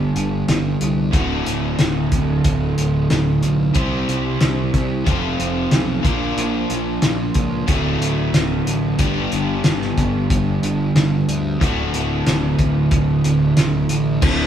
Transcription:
Already playing: G2 D3 G3 B3 D4 G4
0.16 G1, closed hi-hat
0.48 G1, snare, closed hi-hat
0.81 C2, closed hi-hat
1.11 D1 D2 A2 D3 A3 F#4, kick, closed hi-hat
1.46 D1, closed hi-hat
1.79 D1, snare, closed hi-hat
2.12 D1, kick, closed hi-hat
2.44 D1, kick, closed hi-hat
2.78 D1, closed hi-hat
3.10 D1, snare, closed hi-hat
3.42 B1, closed hi-hat
3.74 C2 C3 G3 C4 E4 G4 C5, kick, closed hi-hat
4.09 C2, closed hi-hat
4.41 C2, snare, closed hi-hat
4.74 C2, kick, closed hi-hat
5.04 F1 F2 C3 F3 A3 C4 F4, kick, closed hi-hat
5.40 F1, closed hi-hat
5.71 B1, snare, closed hi-hat
6.02 A#1 A#2 F3 A#3 D4 F4 A#4, kick, closed hi-hat
6.37 A#1, closed hi-hat
6.70 A#1, closed hi-hat
7.02 A#1, snare, closed hi-hat
7.34 C#2, kick, closed hi-hat
7.66 D1 D2 A2 D3 A3 F#4, kick, closed hi-hat
7.99 D1, closed hi-hat
8.32 D1, snare, closed hi-hat
8.67 A1, closed hi-hat
8.98 G1 G2 D3 G3 B3 D4 G4, kick, closed hi-hat
9.32 G1, closed hi-hat
9.64 G1, snare, closed hi-hat
9.81 snare
9.98 G1, kick, closed hi-hat
10.30 G1, kick, closed hi-hat
10.63 G1, closed hi-hat
10.95 G1, snare, closed hi-hat
11.28 D2, closed hi-hat
11.59 D1 D2 A2 D3 A3 F#4, kick, closed hi-hat
11.93 D1, closed hi-hat
12.27 D1, snare, closed hi-hat
12.59 D1, kick, closed hi-hat
12.91 D1, kick, closed hi-hat
13.24 D1, closed hi-hat
13.57 D1, snare, closed hi-hat
13.89 A1, closed hi-hat
14.21 D1 D2 A2 D3, kick, crash

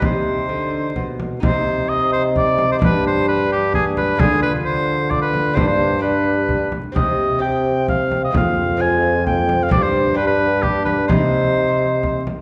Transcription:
0.00 C3 D#4 G4 D#5, frame drum
0.05 C5
0.49 D3
0.96 B2, frame drum
1.20 frame drum
1.40 C3 D#4 G4 C5, frame drum
1.89 D#4 D#5
2.13 C5
2.36 D5, frame drum
2.58 frame drum
2.72 C5
2.79 G2 D4 G4, frame drum
2.84 B4
3.07 C5
3.28 D4 B4
3.52 G4
3.74 G#4, frame drum
3.97 B4, frame drum
4.15 G#3 D4 F4 G#4
4.19 D3 F4, frame drum
4.42 B4
4.65 C5
5.11 F4 D5, frame drum
5.22 B4
5.34 frame drum
5.54 G2 D4 G4 C5, frame drum
5.67 C5
5.99 D4 G4 B4
6.49 frame drum
6.72 frame drum
6.92 C3 C4 G4 D#5
6.96 frame drum
7.39 C4 G4 G5
7.88 F5, frame drum
8.12 frame drum
8.24 D#5
8.31 F2 G#3 C4 F4, frame drum
8.36 C4 F5
8.77 G#3 C4 F4
8.81 C4 G#5
9.26 G5, frame drum
9.49 frame drum
9.63 F5
9.69 G2 C4 D4 D5, frame drum
9.83 C5
10.14 D4 G4 B4
10.27 B4
10.62 D4 G4, frame drum
10.85 B4, frame drum
11.08 C3 D#4 G4 C5, frame drum
12.03 frame drum
12.27 frame drum

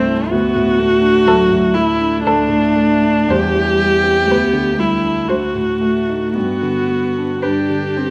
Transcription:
Already playing: C2 G2 A3 C4 E4
0.06 E4
0.30 D2 B3 F#4
0.55 A2
0.79 A3
1.02 D4
1.26 D2 F#3 A4
1.51 A2
1.74 A3 E4
1.99 D4
2.23 D2 D4 A4
2.48 A2
2.76 A3
3.02 D4
3.28 E2 G3 G4 C5
3.54 E3
3.79 G3
4.04 C4
4.27 D2 B3 B4
4.53 D3
4.78 G3 E4
5.04 D4
5.28 D2 A3 F#4 C5
5.54 A2
5.81 A3
6.08 D#4
6.33 G2 B3 F#4
6.63 D3
6.91 B3
7.18 D4
7.42 G2 D4 G4 B4
7.70 D3
7.96 B3 C4

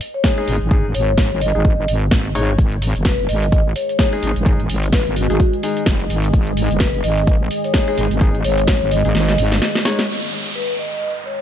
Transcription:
0.01 open hi-hat
0.14 C#5
0.24 G#3 D#4 G#4 C#5, kick, snare
0.38 G#3 D#4 G#4
0.48 G#1, open hi-hat
0.61 G#1
0.71 G#3 D#4 G#4, kick
0.94 G#1 C#5, open hi-hat
1.18 kick, snare
1.31 G#1
1.41 D#5, open hi-hat
1.55 G#1 G#3 D#4 G#4
1.65 G#1, kick
1.88 G#1, open hi-hat
2.11 G#1, kick, snare
2.35 G#1 G#3 D#4 C#5, open hi-hat
2.59 G#1 D#3 G#3 G#4 D#5, kick, closed hi-hat, cabasa
2.72 closed hi-hat
2.82 open hi-hat, cabasa
2.96 F#1, closed hi-hat, cabasa
3.05 B4, kick, snare, closed hi-hat, cabasa
3.19 closed hi-hat
3.29 G#1 D#5, open hi-hat, cabasa
3.42 D#5, closed hi-hat, cabasa
3.52 A1, kick, closed hi-hat, cabasa
3.76 C#5, open hi-hat, cabasa
3.89 C#5, closed hi-hat, cabasa
3.99 G#3 D#4 G#4, kick, snare, closed hi-hat, cabasa
4.13 G#3 D#4 G#4, closed hi-hat
4.23 G#1, open hi-hat, cabasa
4.36 G#1, closed hi-hat, cabasa
4.46 G#3 D#4 G#4, kick, closed hi-hat, cabasa
4.60 closed hi-hat
4.70 G#1, open hi-hat, cabasa
4.83 closed hi-hat, cabasa
4.93 B4, kick, snare, closed hi-hat, cabasa
5.07 G#1, closed hi-hat
5.16 F#4, open hi-hat, cabasa
5.30 G#1 G#3 D#4 G#4, closed hi-hat, cabasa
5.40 kick, closed hi-hat, cabasa
5.53 closed hi-hat
5.63 G#3 D#4 G#4, open hi-hat, cabasa
5.77 closed hi-hat, cabasa
5.86 F#1, kick, snare, closed hi-hat, cabasa
6.00 closed hi-hat
6.10 G#1, open hi-hat, cabasa
6.24 closed hi-hat, cabasa
6.33 G#1, kick, closed hi-hat, cabasa
6.47 closed hi-hat
6.57 open hi-hat, cabasa
6.71 F#1, closed hi-hat, cabasa
6.80 B4, kick, snare, closed hi-hat, cabasa
6.94 closed hi-hat
7.04 G#1 D#5, open hi-hat, cabasa
7.17 D#5, closed hi-hat, cabasa
7.27 A1, kick, closed hi-hat, cabasa
7.51 open hi-hat, cabasa
7.64 C#5, closed hi-hat, cabasa
7.74 G#3 D#4 G#4 C#5, kick, snare, closed hi-hat, cabasa
7.88 G#3 D#4 G#4, closed hi-hat
7.98 G#1, open hi-hat, cabasa
8.11 G#1, closed hi-hat, cabasa
8.21 G#3 D#4 G#4, kick, closed hi-hat, cabasa
8.35 closed hi-hat
8.44 G#1 C#5, open hi-hat, cabasa
8.58 closed hi-hat, cabasa
8.68 kick, snare, closed hi-hat, cabasa
8.81 G#1, closed hi-hat
8.91 D#5, open hi-hat, cabasa
9.05 G#1 G#3 D#4 G#4, closed hi-hat, cabasa
9.15 G#1, snare, closed hi-hat, cabasa
9.28 snare, closed hi-hat
9.38 G#1, open hi-hat, cabasa
9.52 snare, closed hi-hat, cabasa
9.62 snare, closed hi-hat, cabasa
9.75 snare, closed hi-hat
9.85 G#3 D#4 C#5, snare, open hi-hat, cabasa
9.99 snare, closed hi-hat, cabasa
10.09 D#3 G#3 G#4 D#5, downlifter
10.56 B4
10.79 D#5
10.92 D#5
11.26 C#5

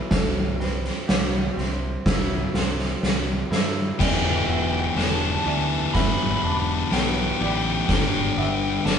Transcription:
Already playing: E3 B3 E4 G4 B4
0.10 C2 C3 A4, kick, snare
0.60 C4 B4, snare
0.85 snare
1.08 C2 G4, snare
1.57 C2 C4, snare
2.06 C2 E4, kick, snare
2.54 C2 C4 A4, snare
2.79 snare
3.02 C2 G3, snare
3.51 G2 E4 A4, snare
3.99 E1 E3 B3 E4 G4 D5 G5, kick, snare, crash
4.47 E1 B3 E5
4.96 E1 E3 B3 D4 E4 G4 A5, snare
5.45 D2 E3 B3 E4 G4 D5
5.93 G1 E3 B3 E4 G4 E5 B5, kick, snare
6.43 E1 D4
6.91 B1 E3 B3 E4 G4 G5, snare
7.40 A1 E3 B3 E4 G4 D5
7.88 G1 G3 B3 D4 G4 G5, kick, snare
8.37 G1 B3 E5
8.85 G1 G3 B3 D4 G4 A5, snare

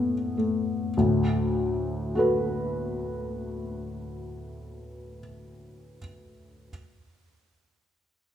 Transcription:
Already playing: A2 A3 B3 C#4 E4 A4
0.37 A3
0.97 D2 A2
2.15 F#4 A4 B4

